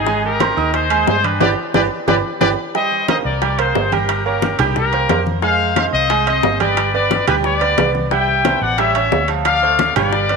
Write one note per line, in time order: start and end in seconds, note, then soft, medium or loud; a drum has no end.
0.00 0.51 G#1 medium
0.00 0.24 D#4 medium
0.00 0.24 G#4 medium
0.07 0.34 G#3 medium
0.07 0.34 G#4 medium
0.07 0.35 G#5 medium
0.07 high bongo medium
0.07 high conga soft
0.24 0.71 G4 medium
0.24 0.71 A#4 medium
0.24 high conga soft
0.40 0.54 C4 medium
0.40 0.54 C5 medium
0.40 0.54 C6 medium
0.40 high bongo medium
0.40 high conga medium
0.40 high timbale loud
0.40 low timbale medium
0.57 1.04 D#2 medium
0.57 0.84 D#4 medium
0.57 0.85 D#5 medium
0.57 0.85 D#6 medium
0.57 high conga soft
0.74 1.07 G#4 medium
0.74 1.07 C5 loud
0.74 high bongo medium
0.74 high conga soft
0.74 high timbale medium
0.90 1.18 G#3 medium
0.90 1.18 G#4 medium
0.90 1.18 G#5 medium
0.90 high conga soft
0.90 high timbale medium
1.07 1.39 G2 medium
1.07 1.23 G#4 medium
1.07 1.23 C5 loud
1.07 high bongo medium
1.07 low bongo medium
1.07 high conga soft
1.07 low timbale medium
1.24 1.38 D4 medium
1.24 1.40 G4 medium
1.24 1.40 B4 medium
1.24 1.38 D5 medium
1.24 1.38 D6 medium
1.24 high conga medium
1.24 high timbale medium
1.40 1.53 G1 loud
1.40 1.51 G4 loud
1.40 1.49 G4 medium
1.40 1.51 B4 medium
1.40 1.49 B4 medium
1.40 1.51 D5 medium
1.40 1.49 D5 medium
1.40 low bongo loud
1.40 high conga medium
1.40 high timbale loud
1.74 1.87 G1 loud
1.74 1.82 G4 medium
1.74 1.85 G4 medium
1.74 1.82 B4 medium
1.74 1.85 B4 loud
1.74 1.82 D5 medium
1.74 1.85 D5 medium
1.74 low bongo loud
1.74 high conga loud
1.74 high timbale medium
2.07 2.20 G1 medium
2.07 2.16 G4 medium
2.07 2.18 G4 medium
2.07 2.16 B4 loud
2.07 2.18 B4 medium
2.07 2.16 D5 medium
2.07 2.18 D5 medium
2.07 low bongo medium
2.07 high conga loud
2.07 high timbale loud
2.41 2.54 G1 medium
2.41 2.49 G4 loud
2.41 2.52 G4 loud
2.41 2.52 B4 loud
2.41 2.49 B4 loud
2.41 2.52 D5 medium
2.41 2.49 D5 loud
2.41 low bongo loud
2.41 high conga medium
2.41 high timbale loud
2.75 3.02 G3 medium
2.75 3.02 G4 medium
2.75 3.07 C5 medium
2.75 3.06 D#5 loud
2.75 3.02 G5 medium
2.75 high bongo medium
2.75 high conga soft
2.92 high conga soft
3.08 3.36 A#3 medium
3.08 3.36 A#4 medium
3.08 3.36 C5 medium
3.08 3.17 C5 medium
3.08 3.16 D#5 medium
3.08 high bongo medium
3.08 high conga loud
3.08 high timbale medium
3.08 low timbale medium
3.25 3.72 C2 medium
3.25 3.57 A#4 medium
3.25 3.57 D5 medium
3.25 high conga soft
3.42 3.56 G3 medium
3.42 3.56 G4 medium
3.42 3.56 G5 medium
3.42 high bongo medium
3.42 high conga soft
3.42 high timbale medium
3.59 3.86 A#3 medium
3.59 3.93 G#4 medium
3.59 3.86 A#4 medium
3.59 3.86 C5 medium
3.59 3.92 C5 medium
3.59 high conga soft
3.59 high timbale medium
3.75 4.53 G1 medium
3.75 high bongo medium
3.75 low bongo medium
3.75 high conga soft
3.75 low timbale medium
3.92 4.20 G3 medium
3.92 4.20 G4 medium
3.92 4.26 G4 medium
3.92 4.25 A#4 medium
3.92 4.20 G5 medium
3.92 high conga medium
3.92 high timbale medium
4.09 high bongo medium
4.09 high conga soft
4.09 high timbale medium
4.26 4.53 A#3 medium
4.26 4.58 G4 medium
4.26 4.53 A#4 medium
4.26 4.57 A#4 medium
4.26 4.53 C#5 medium
4.26 high conga soft
4.42 high bongo medium
4.42 high conga loud
4.42 high timbale medium
4.42 low timbale medium
4.59 5.06 C2 medium
4.59 4.87 G3 medium
4.59 4.77 D#4 medium
4.59 4.87 G4 loud
4.59 4.76 G4 medium
4.59 4.87 G5 loud
4.59 high bongo soft
4.59 low conga medium
4.59 high timbale medium
4.76 5.23 G4 medium
4.76 5.23 A#4 loud
4.76 high bongo medium
4.76 high conga soft
4.76 low conga medium
4.93 5.07 A#3 medium
4.93 5.07 A#4 medium
4.93 5.07 C5 medium
4.93 high bongo soft
4.93 high conga soft
4.93 high timbale medium
5.09 5.87 F2 medium
5.09 5.37 A#3 medium
5.09 5.37 A#4 medium
5.09 5.37 C5 medium
5.09 high bongo medium
5.09 low bongo medium
5.09 high conga medium
5.09 high timbale medium
5.09 low timbale medium
5.26 high bongo soft
5.26 high conga medium
5.42 5.70 G#3 medium
5.42 5.71 G#4 medium
5.42 5.75 C5 medium
5.42 5.74 F5 loud
5.42 5.71 G#5 medium
5.42 high bongo medium
5.42 high conga soft
5.60 high conga soft
5.76 6.04 C4 medium
5.76 5.85 C5 medium
5.76 6.05 C5 medium
5.76 6.05 D#5 medium
5.76 5.84 F5 medium
5.76 high bongo medium
5.76 high conga loud
5.76 high timbale loud
5.76 low timbale medium
5.93 6.40 C2 medium
5.93 6.25 C5 medium
5.93 6.25 D#5 loud
5.93 high conga soft
6.10 6.24 G#3 medium
6.10 6.24 G#4 medium
6.10 6.24 G#5 medium
6.10 high bongo medium
6.10 high conga soft
6.10 high timbale medium
6.27 6.54 C4 medium
6.27 6.54 C5 medium
6.27 6.59 C5 medium
6.27 6.58 D#5 loud
6.27 6.55 D#5 medium
6.27 high conga soft
6.27 high timbale medium
6.43 7.22 G1 loud
6.43 high bongo medium
6.43 low bongo medium
6.43 high conga soft
6.43 low timbale medium
6.60 6.88 G3 medium
6.60 6.88 G4 medium
6.60 6.92 B4 medium
6.60 6.92 D5 medium
6.60 6.88 G5 medium
6.60 high conga medium
6.60 high timbale medium
6.77 high bongo medium
6.77 high conga soft
6.77 high timbale medium
6.94 7.22 B3 medium
6.94 7.22 B4 medium
6.94 7.26 B4 medium
6.94 7.25 D5 loud
6.94 7.22 D5 medium
6.94 high conga soft
7.11 high bongo medium
7.11 high conga loud
7.11 high timbale medium
7.11 low timbale medium
7.27 7.74 D2 medium
7.27 7.55 G3 medium
7.27 7.55 G4 medium
7.27 7.36 G4 medium
7.27 7.36 B4 medium
7.27 7.55 G5 medium
7.27 high bongo soft
7.27 low conga medium
7.27 high timbale loud
7.44 7.92 B4 medium
7.44 7.91 D5 loud
7.44 high bongo medium
7.44 high conga soft
7.61 7.75 B3 medium
7.61 7.75 B4 medium
7.61 7.75 D5 medium
7.61 high bongo soft
7.61 high conga soft
7.61 high timbale medium
7.77 8.56 C2 medium
7.77 8.06 B3 medium
7.77 8.06 B4 medium
7.77 8.06 D5 medium
7.77 high bongo medium
7.77 low bongo medium
7.77 high conga medium
7.77 high timbale medium
7.77 low timbale medium
7.95 high bongo soft
7.95 high conga medium
8.11 8.39 G3 medium
8.11 8.39 G4 medium
8.11 8.59 E5 medium
8.11 8.58 G5 loud
8.11 8.39 G5 medium
8.11 high bongo medium
8.11 high conga soft
8.28 high conga soft
8.45 8.72 B2 medium
8.45 8.73 B4 medium
8.45 8.73 C5 medium
8.45 high bongo medium
8.45 high conga loud
8.45 high timbale medium
8.45 low timbale medium
8.61 9.08 A1 medium
8.61 8.79 D5 medium
8.61 8.78 F#5 loud
8.61 high conga soft
8.78 8.92 G3 medium
8.78 8.93 G4 medium
8.78 9.29 C#5 medium
8.78 9.29 E5 loud
8.78 8.93 G5 medium
8.78 high bongo medium
8.78 high conga soft
8.78 high timbale medium
8.95 9.23 C#4 medium
8.95 9.23 C#5 medium
8.95 9.23 E5 medium
8.95 high conga soft
8.95 high timbale medium
9.12 9.90 D2 medium
9.12 high bongo medium
9.12 low bongo medium
9.12 high conga soft
9.12 low timbale medium
9.28 9.56 F3 medium
9.28 9.56 F4 medium
9.28 9.57 F5 medium
9.28 high timbale medium
9.45 9.93 D5 medium
9.45 9.93 F5 loud
9.45 high bongo medium
9.45 high conga soft
9.45 high timbale loud
9.62 9.90 A3 medium
9.62 9.90 A4 medium
9.62 9.90 C5 medium
9.62 high conga soft
9.79 high bongo medium
9.79 high conga loud
9.79 high timbale medium
9.79 low timbale medium
9.96 10.37 G1 medium
9.96 10.24 G3 loud
9.96 10.24 G4 medium
9.96 10.37 B4 medium
9.96 10.37 D5 loud
9.96 10.24 G5 loud
9.96 high bongo soft
9.96 low conga medium
9.96 high timbale loud
10.13 high bongo medium
10.13 high conga soft
10.29 10.37 B3 medium
10.29 10.37 B4 medium
10.29 10.37 D5 medium
10.29 high bongo soft
10.29 high conga soft
10.29 high timbale medium